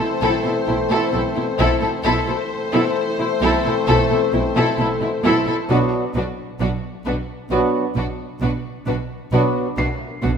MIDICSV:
0, 0, Header, 1, 9, 480
1, 0, Start_track
1, 0, Tempo, 910470
1, 1082, Time_signature, 4, 2, 24, 8
1, 5471, End_track
2, 0, Start_track
2, 0, Title_t, "Felt piano"
2, 0, Program_c, 0, 0
2, 0, Control_c, 0, 64, 127
2, 1081, Note_on_c, 0, 95, 48
2, 2503, Note_off_c, 0, 95, 0
2, 3011, Control_c, 0, 64, 0
2, 3089, Control_c, 0, 64, 127
2, 5157, Note_on_c, 0, 96, 67
2, 5471, Note_off_c, 0, 96, 0
2, 5471, End_track
3, 0, Start_track
3, 0, Title_t, "Violin section"
3, 0, Program_c, 1, 48
3, 0, Note_on_c, 1, 72, 63
3, 1073, Note_off_c, 1, 72, 0
3, 1080, Note_on_c, 1, 72, 83
3, 2980, Note_off_c, 1, 72, 0
3, 3008, Note_on_c, 1, 71, 70
3, 3050, Note_off_c, 1, 71, 0
3, 3243, Note_on_c, 1, 71, 61
3, 3286, Note_off_c, 1, 71, 0
3, 3489, Note_on_c, 1, 71, 60
3, 3531, Note_off_c, 1, 71, 0
3, 3716, Note_on_c, 1, 71, 66
3, 3758, Note_off_c, 1, 71, 0
3, 3959, Note_on_c, 1, 71, 66
3, 4001, Note_off_c, 1, 71, 0
3, 4197, Note_on_c, 1, 71, 61
3, 4239, Note_off_c, 1, 71, 0
3, 4443, Note_on_c, 1, 71, 60
3, 4485, Note_off_c, 1, 71, 0
3, 4675, Note_on_c, 1, 71, 62
3, 4717, Note_off_c, 1, 71, 0
3, 4917, Note_on_c, 1, 71, 69
3, 4959, Note_off_c, 1, 71, 0
3, 5156, Note_on_c, 1, 71, 56
3, 5198, Note_off_c, 1, 71, 0
3, 5394, Note_on_c, 1, 71, 60
3, 5436, Note_off_c, 1, 71, 0
3, 5471, End_track
4, 0, Start_track
4, 0, Title_t, "Violin section"
4, 0, Program_c, 2, 48
4, 115, Note_on_c, 2, 69, 75
4, 228, Note_off_c, 2, 69, 0
4, 238, Note_on_c, 2, 69, 47
4, 280, Note_off_c, 2, 69, 0
4, 356, Note_on_c, 2, 64, 55
4, 398, Note_off_c, 2, 64, 0
4, 476, Note_on_c, 2, 69, 76
4, 589, Note_off_c, 2, 69, 0
4, 596, Note_on_c, 2, 69, 67
4, 638, Note_off_c, 2, 69, 0
4, 715, Note_on_c, 2, 64, 58
4, 757, Note_off_c, 2, 64, 0
4, 839, Note_on_c, 2, 69, 79
4, 952, Note_off_c, 2, 69, 0
4, 958, Note_on_c, 2, 69, 59
4, 1001, Note_off_c, 2, 69, 0
4, 1079, Note_on_c, 2, 69, 82
4, 1192, Note_off_c, 2, 69, 0
4, 1201, Note_on_c, 2, 69, 46
4, 1244, Note_off_c, 2, 69, 0
4, 1439, Note_on_c, 2, 69, 69
4, 1552, Note_off_c, 2, 69, 0
4, 1680, Note_on_c, 2, 64, 59
4, 1722, Note_off_c, 2, 64, 0
4, 1803, Note_on_c, 2, 69, 80
4, 1916, Note_off_c, 2, 69, 0
4, 1925, Note_on_c, 2, 69, 54
4, 1968, Note_off_c, 2, 69, 0
4, 2044, Note_on_c, 2, 69, 83
4, 2157, Note_off_c, 2, 69, 0
4, 2166, Note_on_c, 2, 69, 57
4, 2208, Note_off_c, 2, 69, 0
4, 2287, Note_on_c, 2, 64, 56
4, 2329, Note_off_c, 2, 64, 0
4, 2402, Note_on_c, 2, 69, 78
4, 2514, Note_off_c, 2, 69, 0
4, 2523, Note_on_c, 2, 69, 68
4, 2565, Note_off_c, 2, 69, 0
4, 2641, Note_on_c, 2, 64, 63
4, 2683, Note_off_c, 2, 64, 0
4, 2767, Note_on_c, 2, 69, 74
4, 2876, Note_off_c, 2, 69, 0
4, 2883, Note_on_c, 2, 69, 75
4, 2925, Note_off_c, 2, 69, 0
4, 3004, Note_on_c, 2, 66, 69
4, 3046, Note_off_c, 2, 66, 0
4, 3251, Note_on_c, 2, 66, 61
4, 3294, Note_off_c, 2, 66, 0
4, 3486, Note_on_c, 2, 66, 68
4, 3528, Note_off_c, 2, 66, 0
4, 3726, Note_on_c, 2, 66, 64
4, 3769, Note_off_c, 2, 66, 0
4, 3963, Note_on_c, 2, 66, 62
4, 4005, Note_off_c, 2, 66, 0
4, 4202, Note_on_c, 2, 66, 63
4, 4244, Note_off_c, 2, 66, 0
4, 4442, Note_on_c, 2, 66, 65
4, 4484, Note_off_c, 2, 66, 0
4, 4683, Note_on_c, 2, 66, 56
4, 4725, Note_off_c, 2, 66, 0
4, 4923, Note_on_c, 2, 66, 67
4, 4966, Note_off_c, 2, 66, 0
4, 5157, Note_on_c, 2, 66, 61
4, 5199, Note_off_c, 2, 66, 0
4, 5394, Note_on_c, 2, 66, 60
4, 5436, Note_off_c, 2, 66, 0
4, 5471, End_track
5, 0, Start_track
5, 0, Title_t, "French horn section"
5, 0, Program_c, 3, 60
5, 0, Note_on_c, 3, 60, 73
5, 0, Note_on_c, 3, 69, 70
5, 1057, Note_off_c, 3, 60, 0
5, 1058, Note_off_c, 3, 69, 0
5, 1083, Note_on_c, 3, 69, 81
5, 1085, Note_on_c, 3, 60, 83
5, 2911, Note_off_c, 3, 60, 0
5, 2911, Note_off_c, 3, 69, 0
5, 3001, Note_on_c, 3, 62, 81
5, 3003, Note_on_c, 3, 66, 80
5, 3183, Note_off_c, 3, 62, 0
5, 3184, Note_off_c, 3, 66, 0
5, 3955, Note_on_c, 3, 66, 66
5, 3957, Note_on_c, 3, 62, 70
5, 4138, Note_off_c, 3, 62, 0
5, 4138, Note_off_c, 3, 66, 0
5, 4918, Note_on_c, 3, 62, 73
5, 4918, Note_on_c, 3, 66, 77
5, 5097, Note_off_c, 3, 62, 0
5, 5097, Note_off_c, 3, 66, 0
5, 5471, End_track
6, 0, Start_track
6, 0, Title_t, "Viola section"
6, 0, Program_c, 4, 48
6, 118, Note_on_c, 4, 64, 73
6, 229, Note_off_c, 4, 64, 0
6, 238, Note_on_c, 4, 64, 54
6, 280, Note_off_c, 4, 64, 0
6, 361, Note_on_c, 4, 64, 56
6, 403, Note_off_c, 4, 64, 0
6, 477, Note_on_c, 4, 64, 65
6, 590, Note_off_c, 4, 64, 0
6, 597, Note_on_c, 4, 64, 61
6, 639, Note_off_c, 4, 64, 0
6, 717, Note_on_c, 4, 64, 57
6, 759, Note_off_c, 4, 64, 0
6, 838, Note_on_c, 4, 64, 81
6, 951, Note_off_c, 4, 64, 0
6, 960, Note_on_c, 4, 64, 61
6, 1002, Note_off_c, 4, 64, 0
6, 1078, Note_on_c, 4, 64, 75
6, 1192, Note_off_c, 4, 64, 0
6, 1201, Note_on_c, 4, 64, 45
6, 1243, Note_off_c, 4, 64, 0
6, 1439, Note_on_c, 4, 64, 79
6, 1552, Note_off_c, 4, 64, 0
6, 1680, Note_on_c, 4, 64, 52
6, 1722, Note_off_c, 4, 64, 0
6, 1803, Note_on_c, 4, 64, 81
6, 1915, Note_off_c, 4, 64, 0
6, 1927, Note_on_c, 4, 64, 63
6, 1969, Note_off_c, 4, 64, 0
6, 2048, Note_on_c, 4, 64, 71
6, 2159, Note_off_c, 4, 64, 0
6, 2164, Note_on_c, 4, 64, 64
6, 2206, Note_off_c, 4, 64, 0
6, 2284, Note_on_c, 4, 64, 62
6, 2326, Note_off_c, 4, 64, 0
6, 2406, Note_on_c, 4, 64, 79
6, 2516, Note_off_c, 4, 64, 0
6, 2530, Note_on_c, 4, 64, 80
6, 2572, Note_off_c, 4, 64, 0
6, 2647, Note_on_c, 4, 64, 55
6, 2689, Note_off_c, 4, 64, 0
6, 2768, Note_on_c, 4, 64, 86
6, 2877, Note_off_c, 4, 64, 0
6, 2887, Note_on_c, 4, 64, 67
6, 2929, Note_off_c, 4, 64, 0
6, 3006, Note_on_c, 4, 62, 71
6, 3048, Note_off_c, 4, 62, 0
6, 3247, Note_on_c, 4, 62, 66
6, 3289, Note_off_c, 4, 62, 0
6, 3482, Note_on_c, 4, 62, 63
6, 3524, Note_off_c, 4, 62, 0
6, 3724, Note_on_c, 4, 62, 68
6, 3767, Note_off_c, 4, 62, 0
6, 3961, Note_on_c, 4, 62, 65
6, 4003, Note_off_c, 4, 62, 0
6, 4202, Note_on_c, 4, 62, 61
6, 4244, Note_off_c, 4, 62, 0
6, 4440, Note_on_c, 4, 62, 62
6, 4482, Note_off_c, 4, 62, 0
6, 4682, Note_on_c, 4, 62, 59
6, 4724, Note_off_c, 4, 62, 0
6, 4920, Note_on_c, 4, 62, 71
6, 4962, Note_off_c, 4, 62, 0
6, 5153, Note_on_c, 4, 62, 61
6, 5196, Note_off_c, 4, 62, 0
6, 5397, Note_on_c, 4, 62, 56
6, 5439, Note_off_c, 4, 62, 0
6, 5471, End_track
7, 0, Start_track
7, 0, Title_t, "Trombone section"
7, 0, Program_c, 5, 61
7, 0, Note_on_c, 5, 52, 62
7, 0, Note_on_c, 5, 57, 62
7, 1062, Note_off_c, 5, 52, 0
7, 1063, Note_off_c, 5, 57, 0
7, 1076, Note_on_c, 5, 52, 75
7, 1077, Note_on_c, 5, 57, 76
7, 2915, Note_off_c, 5, 52, 0
7, 2915, Note_off_c, 5, 57, 0
7, 3005, Note_on_c, 5, 59, 69
7, 3006, Note_on_c, 5, 54, 75
7, 3185, Note_off_c, 5, 59, 0
7, 3186, Note_off_c, 5, 54, 0
7, 3960, Note_on_c, 5, 54, 72
7, 3960, Note_on_c, 5, 59, 77
7, 4140, Note_off_c, 5, 54, 0
7, 4140, Note_off_c, 5, 59, 0
7, 4924, Note_on_c, 5, 54, 71
7, 4924, Note_on_c, 5, 59, 67
7, 5100, Note_off_c, 5, 54, 0
7, 5100, Note_off_c, 5, 59, 0
7, 5471, End_track
8, 0, Start_track
8, 0, Title_t, "Cello section"
8, 0, Program_c, 6, 48
8, 115, Note_on_c, 6, 47, 70
8, 157, Note_off_c, 6, 47, 0
8, 234, Note_on_c, 6, 47, 55
8, 276, Note_off_c, 6, 47, 0
8, 357, Note_on_c, 6, 47, 54
8, 399, Note_off_c, 6, 47, 0
8, 474, Note_on_c, 6, 47, 75
8, 516, Note_off_c, 6, 47, 0
8, 597, Note_on_c, 6, 47, 55
8, 639, Note_off_c, 6, 47, 0
8, 717, Note_on_c, 6, 47, 56
8, 759, Note_off_c, 6, 47, 0
8, 839, Note_on_c, 6, 47, 78
8, 881, Note_off_c, 6, 47, 0
8, 959, Note_on_c, 6, 47, 60
8, 1001, Note_off_c, 6, 47, 0
8, 1080, Note_on_c, 6, 47, 74
8, 1122, Note_off_c, 6, 47, 0
8, 1200, Note_on_c, 6, 47, 61
8, 1242, Note_off_c, 6, 47, 0
8, 1442, Note_on_c, 6, 47, 90
8, 1484, Note_off_c, 6, 47, 0
8, 1682, Note_on_c, 6, 47, 58
8, 1724, Note_off_c, 6, 47, 0
8, 1802, Note_on_c, 6, 47, 83
8, 1844, Note_off_c, 6, 47, 0
8, 1926, Note_on_c, 6, 47, 51
8, 1968, Note_off_c, 6, 47, 0
8, 2046, Note_on_c, 6, 47, 79
8, 2088, Note_off_c, 6, 47, 0
8, 2165, Note_on_c, 6, 47, 61
8, 2207, Note_off_c, 6, 47, 0
8, 2285, Note_on_c, 6, 47, 62
8, 2327, Note_off_c, 6, 47, 0
8, 2403, Note_on_c, 6, 47, 81
8, 2445, Note_off_c, 6, 47, 0
8, 2522, Note_on_c, 6, 47, 61
8, 2564, Note_off_c, 6, 47, 0
8, 2639, Note_on_c, 6, 47, 63
8, 2681, Note_off_c, 6, 47, 0
8, 2758, Note_on_c, 6, 47, 85
8, 2801, Note_off_c, 6, 47, 0
8, 2880, Note_on_c, 6, 47, 60
8, 2922, Note_off_c, 6, 47, 0
8, 3000, Note_on_c, 6, 47, 78
8, 3042, Note_off_c, 6, 47, 0
8, 3239, Note_on_c, 6, 47, 76
8, 3281, Note_off_c, 6, 47, 0
8, 3477, Note_on_c, 6, 47, 72
8, 3519, Note_off_c, 6, 47, 0
8, 3718, Note_on_c, 6, 47, 69
8, 3760, Note_off_c, 6, 47, 0
8, 3958, Note_on_c, 6, 47, 70
8, 4000, Note_off_c, 6, 47, 0
8, 4196, Note_on_c, 6, 47, 66
8, 4238, Note_off_c, 6, 47, 0
8, 4435, Note_on_c, 6, 47, 73
8, 4478, Note_off_c, 6, 47, 0
8, 4676, Note_on_c, 6, 47, 67
8, 4718, Note_off_c, 6, 47, 0
8, 4916, Note_on_c, 6, 47, 75
8, 4958, Note_off_c, 6, 47, 0
8, 5153, Note_on_c, 6, 47, 72
8, 5196, Note_off_c, 6, 47, 0
8, 5393, Note_on_c, 6, 47, 75
8, 5435, Note_off_c, 6, 47, 0
8, 5471, End_track
9, 0, Start_track
9, 0, Title_t, "Double bass section"
9, 0, Program_c, 7, 48
9, 116, Note_on_c, 7, 35, 68
9, 158, Note_off_c, 7, 35, 0
9, 357, Note_on_c, 7, 35, 57
9, 399, Note_off_c, 7, 35, 0
9, 599, Note_on_c, 7, 35, 55
9, 641, Note_off_c, 7, 35, 0
9, 839, Note_on_c, 7, 35, 80
9, 881, Note_off_c, 7, 35, 0
9, 1079, Note_on_c, 7, 35, 84
9, 1121, Note_off_c, 7, 35, 0
9, 1802, Note_on_c, 7, 35, 83
9, 1844, Note_off_c, 7, 35, 0
9, 2044, Note_on_c, 7, 35, 81
9, 2086, Note_off_c, 7, 35, 0
9, 2286, Note_on_c, 7, 35, 65
9, 2328, Note_off_c, 7, 35, 0
9, 2523, Note_on_c, 7, 35, 61
9, 2565, Note_off_c, 7, 35, 0
9, 2764, Note_on_c, 7, 35, 78
9, 2806, Note_off_c, 7, 35, 0
9, 3003, Note_on_c, 7, 35, 86
9, 3045, Note_off_c, 7, 35, 0
9, 3241, Note_on_c, 7, 35, 77
9, 3283, Note_off_c, 7, 35, 0
9, 3480, Note_on_c, 7, 35, 83
9, 3522, Note_off_c, 7, 35, 0
9, 3719, Note_on_c, 7, 35, 62
9, 3761, Note_off_c, 7, 35, 0
9, 3958, Note_on_c, 7, 35, 71
9, 4000, Note_off_c, 7, 35, 0
9, 4197, Note_on_c, 7, 35, 66
9, 4239, Note_off_c, 7, 35, 0
9, 4437, Note_on_c, 7, 35, 76
9, 4479, Note_off_c, 7, 35, 0
9, 4678, Note_on_c, 7, 35, 71
9, 4720, Note_off_c, 7, 35, 0
9, 4915, Note_on_c, 7, 35, 83
9, 4957, Note_off_c, 7, 35, 0
9, 5153, Note_on_c, 7, 35, 69
9, 5195, Note_off_c, 7, 35, 0
9, 5393, Note_on_c, 7, 35, 77
9, 5435, Note_off_c, 7, 35, 0
9, 5471, End_track
0, 0, End_of_file